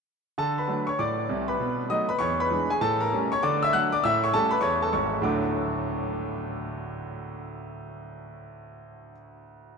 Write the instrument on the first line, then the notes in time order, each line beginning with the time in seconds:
grand piano
0.38 D3 A4 A5
0.58 B4 B5
0.68 F#3 A3 D4
0.87 C#5 C#6
0.99 A2 D5 D6
1.29 C2 C3
1.48 B4 B5
1.60 B2
1.90 F#3 A3 D#4 D#5 D#6
2.09 B4 B5
2.19 E2 C#5 C#6
2.40 B4 B5
2.50 E3 G#3 D4
2.70 G#4 G#5
2.81 A2 A4 A5
3.00 A#4 A#5
3.13 G3 A3 C#4
3.32 C#5 C#6
3.43 D3 D5 D6
3.63 E5 E6
3.73 F#3 A3 D4 F#5 F#6
3.92 D5 D6
4.04 A2 E5 E6
4.24 C#5 C#6
4.34 G3 A3 C#4 A4 A5
4.51 B4 B5
4.61 E2 C#5 C#6
4.82 A4 A5
4.93 G#1 G#2 C#5 C#6
5.22 D2 A2 F#3 A3 D4 F#4 D6